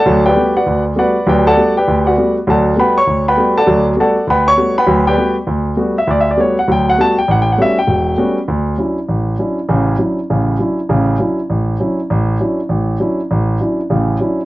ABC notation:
X:1
M:4/4
L:1/16
Q:"Swing" 1/4=199
K:Glyd
V:1 name="Grand piano"
[Adfa]2 [GBdg]4 [FBdf]4 z2 [Bdf]4 | [GBdg]2 [Adfa]4 [GBdg]4 [FBdf]4 z2 | [Adfa]4 [Bfgb]2 [cc']4 [Bfgb]4 [Adfa]2- | [Adfa]2 z2 [Adfa]4 [Bfgb]2 [cc']4 [Bfgb]2- |
[Bfgb]2 [GBdg]4 z8 e2 | (3d2 e2 d2 c2 f2 g2 f2 a2 g2 | (3f2 g2 f2 e2 g8- g z | [K:D] z16 |
z16 | z16 | z16 | z16 |]
V:2 name="Grand piano"
[D,,F,]4 [G,A,B,F]2 z2 D,,4 [G,A,B,F]2 z2 | [D,,F,]4 [G,A,B,F]2 z2 D,,4 [G,A,B,F]2 z2 | [D,,F,]4 [G,A,B,F]2 z2 D,,4 [G,A,B,F]2 z2 | [D,,F,]4 [G,A,B,F]2 z2 D,,4 [G,A,B,F]2 z2 |
[D,,F,]4 [G,A,B,F]2 z2 D,,4 [G,A,B,F]2 z2 | D,,4 [G,A,B,F]2 z2 [D,,F,]4 [G,A,B,F]2 z2 | A,,,4 [G,A,B,CF]2 z2 E,,,4 [G,A,B,CF]2 z2 | [K:D] D,,4 [F,CDE]2 z2 A,,,4 [F,CDE]2 z2 |
[A,,,C,]4 [F,CDE]2 z2 [A,,,C,]4 [F,CDE]2 z2 | [A,,,C,]4 [F,CDE]2 z2 A,,,4 [F,CDE]2 z2 | A,,,4 [F,CDE]2 z2 A,,,4 [F,CDE]2 z2 | A,,,4 [F,CDE]2 z2 [A,,,C,]4 [F,CDE]2 z2 |]